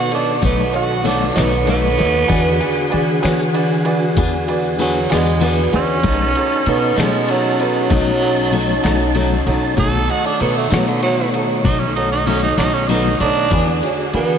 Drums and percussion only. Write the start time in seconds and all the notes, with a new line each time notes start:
0.11 ride
0.43 kick, ride
0.74 ride
1.05 snare, ride
1.36 snare, ride
1.67 ride
1.98 snare, ride
2.29 kick, ride
2.61 ride
2.92 ride
3.23 snare, ride
3.54 ride
3.85 ride
4.17 kick, ride
4.48 ride
4.79 ride
5.10 snare, ride
5.41 ride
5.73 ride
6.03 kick, ride
6.35 ride
6.66 ride
6.97 snare, ride
7.29 ride
7.60 ride
7.90 kick, ride
8.22 ride
8.53 ride
8.84 snare, ride
9.15 ride
9.47 snare, ride
9.78 kick, ride
10.09 ride
10.40 ride
10.71 snare, ride
11.03 ride
11.34 ride
11.65 kick, ride
11.97 ride
12.27 ride
12.58 snare, ride
12.89 ride
13.20 ride
13.51 kick, ride
13.83 ride
14.14 ride